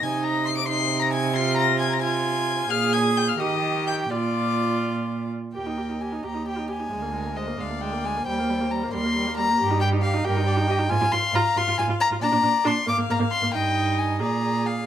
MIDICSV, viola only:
0, 0, Header, 1, 2, 480
1, 0, Start_track
1, 0, Key_signature, -3, "major"
1, 0, Tempo, 445765
1, 38, Time_signature, 6, 3, 24, 8
1, 3399, Tempo, 480384
1, 5799, Tempo, 459067
1, 6759, Tempo, 446097
1, 10119, Tempo, 438596
1, 14439, Tempo, 453172
1, 15833, End_track
2, 0, Start_track
2, 0, Title_t, "Viola"
2, 0, Program_c, 0, 41
2, 12, Note_on_c, 0, 63, 80
2, 688, Note_off_c, 0, 63, 0
2, 731, Note_on_c, 0, 63, 73
2, 1438, Note_off_c, 0, 63, 0
2, 1461, Note_on_c, 0, 65, 88
2, 2163, Note_off_c, 0, 65, 0
2, 2173, Note_on_c, 0, 65, 74
2, 2889, Note_off_c, 0, 65, 0
2, 2904, Note_on_c, 0, 68, 90
2, 3594, Note_off_c, 0, 68, 0
2, 3637, Note_on_c, 0, 67, 75
2, 4345, Note_on_c, 0, 65, 83
2, 4360, Note_off_c, 0, 67, 0
2, 5584, Note_off_c, 0, 65, 0
2, 5789, Note_on_c, 0, 67, 47
2, 5911, Note_on_c, 0, 63, 42
2, 5927, Note_off_c, 0, 67, 0
2, 6024, Note_on_c, 0, 67, 41
2, 6040, Note_off_c, 0, 63, 0
2, 6150, Note_on_c, 0, 63, 42
2, 6166, Note_off_c, 0, 67, 0
2, 6274, Note_off_c, 0, 63, 0
2, 6280, Note_on_c, 0, 67, 42
2, 6390, Note_on_c, 0, 63, 42
2, 6406, Note_off_c, 0, 67, 0
2, 6509, Note_on_c, 0, 67, 43
2, 6525, Note_off_c, 0, 63, 0
2, 6624, Note_on_c, 0, 63, 42
2, 6639, Note_off_c, 0, 67, 0
2, 6750, Note_off_c, 0, 63, 0
2, 6755, Note_on_c, 0, 67, 44
2, 6866, Note_on_c, 0, 63, 42
2, 6882, Note_off_c, 0, 67, 0
2, 6986, Note_on_c, 0, 67, 47
2, 7002, Note_off_c, 0, 63, 0
2, 7102, Note_on_c, 0, 63, 42
2, 7118, Note_off_c, 0, 67, 0
2, 7199, Note_off_c, 0, 63, 0
2, 7206, Note_on_c, 0, 56, 51
2, 7341, Note_on_c, 0, 58, 46
2, 7357, Note_off_c, 0, 56, 0
2, 7455, Note_on_c, 0, 56, 47
2, 7471, Note_off_c, 0, 58, 0
2, 7584, Note_on_c, 0, 58, 44
2, 7600, Note_off_c, 0, 56, 0
2, 7688, Note_off_c, 0, 58, 0
2, 7695, Note_on_c, 0, 56, 47
2, 7828, Note_on_c, 0, 58, 49
2, 7844, Note_off_c, 0, 56, 0
2, 7944, Note_on_c, 0, 56, 52
2, 7960, Note_off_c, 0, 58, 0
2, 8068, Note_on_c, 0, 58, 52
2, 8084, Note_off_c, 0, 56, 0
2, 8186, Note_off_c, 0, 58, 0
2, 8192, Note_on_c, 0, 56, 51
2, 8319, Note_on_c, 0, 58, 52
2, 8335, Note_off_c, 0, 56, 0
2, 8450, Note_on_c, 0, 56, 55
2, 8467, Note_off_c, 0, 58, 0
2, 8577, Note_on_c, 0, 58, 53
2, 8593, Note_off_c, 0, 56, 0
2, 8682, Note_off_c, 0, 58, 0
2, 8689, Note_on_c, 0, 55, 60
2, 8821, Note_on_c, 0, 58, 57
2, 8837, Note_off_c, 0, 55, 0
2, 8927, Note_on_c, 0, 55, 61
2, 8943, Note_off_c, 0, 58, 0
2, 9050, Note_on_c, 0, 58, 65
2, 9066, Note_off_c, 0, 55, 0
2, 9159, Note_off_c, 0, 58, 0
2, 9165, Note_on_c, 0, 55, 59
2, 9295, Note_on_c, 0, 58, 59
2, 9311, Note_off_c, 0, 55, 0
2, 9405, Note_on_c, 0, 55, 65
2, 9421, Note_off_c, 0, 58, 0
2, 9517, Note_on_c, 0, 58, 57
2, 9533, Note_off_c, 0, 55, 0
2, 9640, Note_off_c, 0, 58, 0
2, 9649, Note_on_c, 0, 55, 64
2, 9768, Note_on_c, 0, 58, 66
2, 9784, Note_off_c, 0, 55, 0
2, 9882, Note_on_c, 0, 55, 71
2, 9898, Note_off_c, 0, 58, 0
2, 10009, Note_on_c, 0, 58, 58
2, 10026, Note_off_c, 0, 55, 0
2, 10114, Note_off_c, 0, 58, 0
2, 10121, Note_on_c, 0, 67, 74
2, 10239, Note_on_c, 0, 63, 58
2, 10256, Note_off_c, 0, 67, 0
2, 10343, Note_on_c, 0, 67, 70
2, 10359, Note_off_c, 0, 63, 0
2, 10477, Note_on_c, 0, 63, 66
2, 10493, Note_off_c, 0, 67, 0
2, 10577, Note_off_c, 0, 63, 0
2, 10583, Note_on_c, 0, 67, 69
2, 10707, Note_on_c, 0, 63, 69
2, 10724, Note_off_c, 0, 67, 0
2, 10826, Note_on_c, 0, 67, 77
2, 10842, Note_off_c, 0, 63, 0
2, 10958, Note_on_c, 0, 63, 62
2, 10975, Note_off_c, 0, 67, 0
2, 11058, Note_off_c, 0, 63, 0
2, 11065, Note_on_c, 0, 67, 74
2, 11181, Note_on_c, 0, 63, 68
2, 11197, Note_off_c, 0, 67, 0
2, 11295, Note_on_c, 0, 67, 81
2, 11312, Note_off_c, 0, 63, 0
2, 11422, Note_on_c, 0, 63, 65
2, 11438, Note_off_c, 0, 67, 0
2, 11527, Note_off_c, 0, 63, 0
2, 11533, Note_on_c, 0, 65, 85
2, 11585, Note_off_c, 0, 65, 0
2, 11659, Note_on_c, 0, 65, 68
2, 11710, Note_off_c, 0, 65, 0
2, 11790, Note_on_c, 0, 65, 62
2, 11839, Note_off_c, 0, 65, 0
2, 12034, Note_on_c, 0, 65, 102
2, 12082, Note_off_c, 0, 65, 0
2, 12274, Note_on_c, 0, 65, 79
2, 12323, Note_off_c, 0, 65, 0
2, 12395, Note_on_c, 0, 65, 76
2, 12443, Note_off_c, 0, 65, 0
2, 12513, Note_on_c, 0, 65, 91
2, 12561, Note_off_c, 0, 65, 0
2, 12626, Note_on_c, 0, 65, 86
2, 12676, Note_off_c, 0, 65, 0
2, 12873, Note_on_c, 0, 65, 64
2, 12922, Note_off_c, 0, 65, 0
2, 12996, Note_on_c, 0, 62, 97
2, 13044, Note_off_c, 0, 62, 0
2, 13097, Note_on_c, 0, 62, 63
2, 13149, Note_off_c, 0, 62, 0
2, 13213, Note_on_c, 0, 62, 77
2, 13266, Note_off_c, 0, 62, 0
2, 13453, Note_on_c, 0, 62, 100
2, 13505, Note_off_c, 0, 62, 0
2, 13694, Note_on_c, 0, 58, 67
2, 13746, Note_off_c, 0, 58, 0
2, 13812, Note_on_c, 0, 58, 68
2, 13865, Note_off_c, 0, 58, 0
2, 13944, Note_on_c, 0, 58, 90
2, 13994, Note_off_c, 0, 58, 0
2, 14053, Note_on_c, 0, 58, 78
2, 14106, Note_off_c, 0, 58, 0
2, 14303, Note_on_c, 0, 58, 72
2, 14354, Note_off_c, 0, 58, 0
2, 14412, Note_on_c, 0, 63, 78
2, 15127, Note_on_c, 0, 68, 64
2, 15143, Note_off_c, 0, 63, 0
2, 15833, Note_off_c, 0, 68, 0
2, 15833, End_track
0, 0, End_of_file